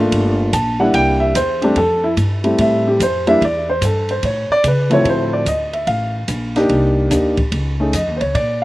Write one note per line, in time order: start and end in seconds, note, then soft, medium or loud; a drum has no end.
0.00 0.10 G#1 medium
0.00 0.50 A3 medium
0.00 0.50 A#3 medium
0.00 0.50 D4 medium
0.00 0.50 F4 medium
0.12 0.52 G1 medium
0.12 kick soft
0.12 ride medium
0.53 0.93 A#1 medium
0.53 0.79 A5 medium
0.53 kick soft
0.53 hi-hat pedal medium
0.53 ride medium
0.79 1.32 G3 medium
0.79 1.32 A#3 medium
0.79 1.32 D4 medium
0.79 1.33 E4 medium
0.79 0.94 F#5 medium
0.93 1.34 C2 medium
0.93 1.20 G5 loud
0.93 kick soft
0.93 ride medium
1.20 1.34 E5 medium
1.35 1.75 E2 medium
1.35 1.62 C5 medium
1.35 kick soft
1.35 hi-hat pedal medium
1.35 ride medium
1.62 1.75 G3 medium
1.62 1.75 A3 medium
1.62 1.75 C4 medium
1.62 1.76 D4 medium
1.62 1.75 G4 medium
1.62 ride soft
1.76 2.16 F2 medium
1.76 2.03 A4 medium
1.76 kick soft
1.76 ride medium
2.04 2.12 E4 medium
2.17 2.57 G2 medium
2.17 kick soft
2.17 hi-hat pedal soft
2.17 ride medium
2.44 2.96 G3 medium
2.44 2.96 A3 medium
2.44 2.97 C4 medium
2.44 2.97 E4 medium
2.44 ride soft
2.58 2.98 A2 medium
2.58 2.86 E5 medium
2.58 kick soft
2.58 ride medium
2.87 3.00 G4 medium
3.00 3.39 F2 medium
3.00 3.27 C5 medium
3.00 kick soft
3.00 hi-hat pedal medium
3.00 ride medium
3.27 3.40 G3 medium
3.27 3.40 A#3 medium
3.27 3.40 D4 medium
3.27 3.40 E4 medium
3.27 3.41 E5 loud
3.27 ride soft
3.41 3.81 E2 medium
3.41 3.69 D5 medium
3.41 kick soft
3.41 ride medium
3.70 3.82 C5 medium
3.81 4.22 G2 medium
3.81 4.10 A4 medium
3.81 kick soft
3.81 hi-hat pedal medium
3.81 ride medium
4.09 4.24 C5 medium
4.09 ride soft
4.23 4.48 A2 medium
4.23 4.50 C#5 medium
4.23 kick soft
4.23 ride medium
4.50 4.65 D5 loud
4.50 muted upright bass stroke soft
4.64 5.04 C#3 medium
4.64 4.92 B4 medium
4.64 kick soft
4.64 hi-hat pedal medium
4.64 ride medium
4.90 5.43 D2 medium
4.90 5.43 F3 medium
4.90 5.43 A3 medium
4.90 5.43 C4 medium
4.90 5.44 E4 medium
4.90 5.06 C#5 medium
4.90 ride soft
5.05 5.45 A2 medium
5.05 kick soft
5.05 ride medium
5.09 5.34 C5 medium
5.33 5.46 D5 medium
5.46 5.86 D2 medium
5.46 5.73 D#5 medium
5.46 kick soft
5.46 hi-hat pedal soft
5.46 ride medium
5.73 5.87 E5 medium
5.73 ride soft
5.87 6.27 A1 medium
5.87 7.07 F5 medium
5.87 kick soft
5.87 ride medium
6.28 6.68 A#1 medium
6.28 kick soft
6.28 hi-hat pedal medium
6.28 ride medium
6.56 7.08 A#3 medium
6.56 7.08 D4 medium
6.56 7.08 D#4 medium
6.56 7.08 G4 medium
6.56 snare soft
6.56 ride soft
6.69 7.09 C2 medium
6.69 kick soft
6.69 ride soft
7.11 7.51 D#2 medium
7.11 7.35 A#3 medium
7.11 7.35 D4 medium
7.11 7.35 D#4 medium
7.11 7.36 G4 medium
7.11 kick soft
7.11 hi-hat pedal medium
7.11 ride medium
7.37 kick medium
7.37 ride soft
7.52 7.92 C#2 medium
7.52 kick soft
7.52 ride medium
7.80 7.92 A3 medium
7.80 7.92 C#4 soft
7.80 7.92 D#4 medium
7.80 7.93 G#4 medium
7.93 8.07 F2 medium
7.93 8.20 D#5 medium
7.93 kick soft
7.93 hi-hat pedal medium
7.93 ride medium
8.07 8.20 D#2 medium
8.17 8.19 C5 medium
8.21 8.34 C#2 medium
8.21 8.34 C#5 medium
8.21 ride soft
8.34 8.64 A#2 medium
8.34 8.61 D5 medium
8.34 kick soft
8.34 ride medium